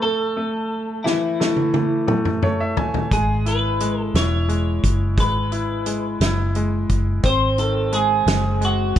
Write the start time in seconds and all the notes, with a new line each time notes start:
Already playing: A3
0.02 A3 A4
0.37 A3
1.04 E3 E4, snare
1.40 A3, snare
1.56 high tom
1.74 A3, high tom
2.07 A3, mid tom
2.25 mid tom
2.43 A3 C#5, mid tom
2.60 E5
2.77 G#5, floor tom
2.94 floor tom
3.11 G#1 G#3 G#4, kick, closed hi-hat
3.46 E4 B4, closed hi-hat
3.80 G#3, closed hi-hat
4.00 A4
4.14 E1 E4 C#5, snare, closed hi-hat
4.49 G#3, closed hi-hat
4.84 F#1, kick, closed hi-hat
5.17 G#1 G#3 B4, kick, closed hi-hat
5.52 E4, closed hi-hat
5.86 G#3, closed hi-hat
6.21 F#1 E4, snare, closed hi-hat
6.55 G#3, closed hi-hat
6.90 F#1, kick, closed hi-hat
7.23 G#1 C4 C5, kick, closed hi-hat
7.58 D#3 A4, closed hi-hat
7.92 G#3 G#4, closed hi-hat
8.26 F#1 G#3, snare, closed hi-hat
8.61 G#3 F#4, closed hi-hat